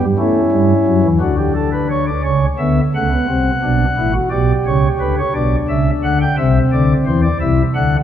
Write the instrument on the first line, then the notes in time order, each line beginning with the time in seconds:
pipe organ
0.00 G2 G3
0.18 A3 C#4 E4
0.52 G2 G3
0.86 F#2 F#3
1.03 E2 E3
1.20 D2 D3 D4 F#4
1.38 G4
1.55 A4
1.72 B4
1.89 C#5
2.07 D5
2.23 C#2 C#3 C#4 C#5
2.58 D2 D3 B3 E5
2.94 C#2 C#3 A3 F#5
3.11 B3
3.28 C2 C3 C4
3.63 B1 B2 D4
3.97 A1 A2 E4
4.13 F#4
4.30 B1 B2 G4 D5
4.66 C#2 C#3 C#5
4.99 D2 D3 B4
5.18 C#5
5.34 B1 B2 D4 D5
5.69 C#2 C#3 E5
6.03 D2 D3 F#5
6.21 G5
6.37 C2 C3 C4 E5
6.72 D2 D3 D5
7.06 E2 E3 C5
7.22 D5
7.40 C2 C3 E4 E5
7.74 D2 D3 D4 F#5